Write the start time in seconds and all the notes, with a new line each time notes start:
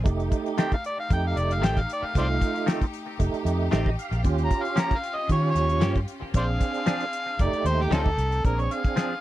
0.03 F1 A3 D#4 G4, kick, closed hi-hat
0.20 closed hi-hat
0.32 kick, closed hi-hat
0.46 closed hi-hat
0.58 D#3 A3 C4 G4 G5, snare, closed hi-hat
0.72 F5, kick, closed hi-hat
0.84 D5, closed hi-hat
1.00 F5
1.10 F2 A3 D#4 G4 G5, kick, closed hi-hat
1.27 F5
1.36 F1 D5, closed hi-hat
1.51 F5, closed hi-hat
1.62 A1 D#3 A3 C4 G4, snare, closed hi-hat
1.66 G5
1.77 F5, kick, closed hi-hat
1.89 D5, closed hi-hat
2.03 F5, muted fingered electric bass stroke
2.15 C2 A3 D#4 F4 C5 D5 F5, kick, closed hi-hat
2.41 kick, closed hi-hat
2.56 closed hi-hat
2.66 D#3 A3 C4 G4, snare, closed hi-hat
2.81 kick, closed hi-hat
2.94 closed hi-hat
3.19 F1 A3 D#4 G4, kick, closed hi-hat
3.33 muted fingered electric bass stroke, closed hi-hat
3.45 F2, closed hi-hat
3.71 A1 D#3 A3 C4 G4 D#5, snare, closed hi-hat
3.86 kick
3.99 F5, closed hi-hat
4.11 A#1, closed hi-hat
4.23 D#2 C#4 F4 G4, kick, closed hi-hat
4.38 closed hi-hat
4.45 A#5
4.51 kick, closed hi-hat
4.62 F5, closed hi-hat
4.76 F3 A#3 C#4 G4, snare, closed hi-hat
4.80 A#5
4.91 kick, closed hi-hat
4.98 F5
5.03 closed hi-hat
5.15 D#5
5.29 D#3 C#4 F4 G4 C#5, kick, closed hi-hat
5.50 C#5
5.55 D#2, snare, closed hi-hat
5.69 closed hi-hat
5.81 G2 F3 A#3 C#4 G4, snare, closed hi-hat
5.95 kick, closed hi-hat
6.08 closed hi-hat
6.22 muted fingered electric bass stroke
6.34 A#1 C4 D4 G#4 C5 D5 F5, kick, closed hi-hat
6.61 kick, closed hi-hat
6.74 closed hi-hat
6.86 F3 C4 D4 G#4, snare, closed hi-hat
7.00 closed hi-hat
7.13 closed hi-hat
7.39 F1 A3 D#4 G4 D5, kick, closed hi-hat
7.53 closed hi-hat
7.65 D#2 C5, closed hi-hat
7.81 G4, snare
7.91 D2 G3 C4 C#4 D#4 F4 A4, snare, closed hi-hat
8.06 kick
8.18 C2, snare, closed hi-hat
8.32 closed hi-hat
8.43 A#1 C4 D4 G#4 A#4, kick, closed hi-hat
8.59 C#5, closed hi-hat
8.71 F5, closed hi-hat
8.85 kick, closed hi-hat
8.96 F3 C4 D4 G#4, snare, closed hi-hat